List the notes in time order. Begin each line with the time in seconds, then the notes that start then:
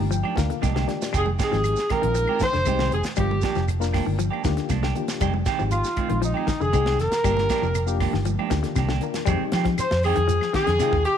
Already playing: A#5
0.00 G1
0.11 F3 G5, muted clean electric guitar stroke, closed hi-hat, shekere
0.23 F3 D4 G4, high conga, claves
0.36 D2 D#3 A#3 D4 F4 A#4 F5, muted clean electric guitar stroke, kick, snare, closed hi-hat, high conga, shekere
0.50 D3, closed hi-hat, shekere
0.61 C2 C3 F3 A#3 D4 G4 D#5, kick, snare, closed hi-hat, high conga, claves, shekere
0.74 D3 A#3 D4 G4, snare
0.87 A#3 D4 F4 G4 D5, muted clean electric guitar stroke, snare, closed hi-hat, high conga, low conga, shekere
1.01 muted clean electric guitar stroke, snare, closed hi-hat, shekere
1.13 F1 D#3 G#3 C4 G4, muted clean electric guitar stroke, kick, closed hi-hat, claves, shekere
1.17 G#4
1.26 muted clean electric guitar stroke, high conga, low conga
1.39 D#3 G#3 C4 G4, kick, snare, closed hi-hat, shekere
1.44 G#4
1.51 G#1 F3 G#3 C4 D#4 G4, snare, shekere
1.64 muted clean electric guitar stroke, closed hi-hat, claves, shekere
1.76 muted clean electric guitar stroke, snare, shekere
1.89 D#3 G#3 C4 G4 A#4, kick, snare, closed hi-hat, high conga, low conga, claves, shekere
2.02 A#1 D#3 G#3 C4 D#4 F4, muted clean electric guitar stroke, closed hi-hat
2.15 muted clean electric guitar stroke, closed hi-hat, shekere
2.28 D#3 G#3 C4 G4, high conga, claves
2.40 D#3 C5, muted clean electric guitar stroke, kick, snare, closed hi-hat, high conga, shekere
2.53 F1 D3, snare, shekere
2.65 C2 C3 D#3 G#3 C4 D#4 G4, kick, closed hi-hat, high conga, claves, shekere
2.79 D#3 G#3 C4 G4, snare
2.91 F1 G#4, muted clean electric guitar stroke, closed hi-hat, high conga, low conga, shekere
3.04 muted clean electric guitar stroke, muted fingered electric bass stroke, snare, closed hi-hat, shekere
3.16 G1 F3 G3 A#3 D4 F4 G4, muted clean electric guitar stroke, kick, closed hi-hat, claves, shekere
3.31 muted clean electric guitar stroke, high conga, low conga
3.41 F3 A#3 D4 G4, kick, snare, closed hi-hat, shekere
3.55 F1 F3, snare, shekere
3.68 muted clean electric guitar stroke, closed hi-hat, claves, shekere
3.80 A#3 D4 F4 A#4, muted clean electric guitar stroke, snare, shekere
3.93 F3 A#3 D4 G4, kick, snare, open hi-hat, high conga, low conga, claves, shekere
4.06 G1 D#3, muted clean electric guitar stroke, high conga
4.18 F3, muted clean electric guitar stroke, closed hi-hat, shekere
4.31 F3 A#3 D4 G4, claves
4.43 D2 D#3 A#3 D4 F4 G4, muted clean electric guitar stroke, kick, snare, closed hi-hat, high conga, shekere
4.57 D3, snare, closed hi-hat, shekere
4.69 C2 C3 F3 A#3 D4, kick, snare, closed hi-hat, high conga, claves, shekere
4.83 D3 D4 G4, snare
4.95 A#3 D4 F4 G4, muted clean electric guitar stroke, closed hi-hat, low conga, shekere
5.08 muted clean electric guitar stroke, snare, closed hi-hat, shekere
5.20 F1 D#3 G3 G#3 C4 G4, kick, closed hi-hat, claves, shekere
5.34 muted clean electric guitar stroke, high conga
5.46 D#3 G#3 C4 G4, kick, snare, closed hi-hat, shekere
5.59 G#1 F3 G#3 C4 D#4 G4, shekere
5.71 F4, muted clean electric guitar stroke, closed hi-hat, claves, shekere
5.84 muted clean electric guitar stroke, snare, shekere
5.96 D#3 G#3 C4, muted clean electric guitar stroke, kick, closed hi-hat, high conga, low conga, claves, shekere
6.09 A#1 D#3 G#3 C4 D#4 F4, muted clean electric guitar stroke, closed hi-hat, high conga
6.22 F3 D#4, muted clean electric guitar stroke, closed hi-hat, shekere
6.34 D#3 G#3 C4 G4, high conga, claves
6.47 D#3, muted clean electric guitar stroke, kick, snare, closed hi-hat, high conga, shekere
6.61 F1 D3 G#4, shekere
6.72 C2 C3 G#3 C4 D#4 G4 G#4, muted clean electric guitar stroke, kick, closed hi-hat, high conga, claves, shekere
6.85 C3 C4 G4, snare
6.98 F1 A#4, muted clean electric guitar stroke, snare, closed hi-hat, low conga, shekere
7.11 muted clean electric guitar stroke, muted fingered electric bass stroke, snare, closed hi-hat, shekere
7.23 G1 G3 A#3 D4 F4 G4, muted clean electric guitar stroke, kick, snare, closed hi-hat, claves, shekere
7.36 muted clean electric guitar stroke, snare, high conga, low conga
7.49 F3 A#3 D4 G4, kick, snare, closed hi-hat, shekere
7.62 F1 F3, shekere
7.75 muted clean electric guitar stroke, closed hi-hat, claves, shekere
7.87 A#3 D4 F4 G4, muted clean electric guitar stroke, shekere
8.00 F3 A#3 D4 G4, kick, snare, open hi-hat, high conga, low conga, claves, shekere
8.13 G1 D#3, muted clean electric guitar stroke, snare
8.25 F3, muted clean electric guitar stroke, closed hi-hat, high conga, shekere
8.39 F3 A#3 D4 G4, high conga, claves
8.50 D2 D#3 A#3 D4 F4 G4, muted clean electric guitar stroke, kick, snare, closed hi-hat, high conga, shekere
8.63 D3, snare, closed hi-hat, low conga, shekere
8.76 C2 C3 F3 A#3 D4 G4, kick, snare, closed hi-hat, low conga, claves, shekere
8.89 D3 A#3 D4 G4, snare, low conga
9.01 A#3 D4 F4 A#4, muted clean electric guitar stroke, closed hi-hat, low conga, shekere
9.14 muted clean electric guitar stroke, snare, closed hi-hat, low conga, shekere
9.26 F2 D#3 G3 G#3 C4 D#4 G4, muted clean electric guitar stroke, kick, closed hi-hat, claves, shekere
9.41 muted fingered electric bass stroke
9.52 D#3 F3 G#3 C4 G4, snare, closed hi-hat, shekere
9.65 F3, muted clean electric guitar stroke, kick, snare, closed hi-hat
9.78 C5, muted clean electric guitar stroke, snare, closed hi-hat, claves, shekere
9.91 F2, muted clean electric guitar stroke, snare
10.03 D#3 G#3 C4 G4 G#4, open hi-hat, claves, shekere
10.16 F2 D#3, muted clean electric guitar stroke, closed hi-hat
10.28 F3, closed hi-hat, shekere
10.41 muted clean electric guitar stroke, snare, claves
10.53 D#3 C4 G4 G#4, muted clean electric guitar stroke, kick, snare, closed hi-hat, shekere
10.67 F2 D3, muted clean electric guitar stroke, snare, closed hi-hat
10.79 C3 D#3 G#3 C4 D#4 F4 G4, snare, closed hi-hat, claves, shekere
10.92 D#2 D#3, kick
11.05 G4, muted clean electric guitar stroke, muted fingered electric bass stroke, closed hi-hat, shekere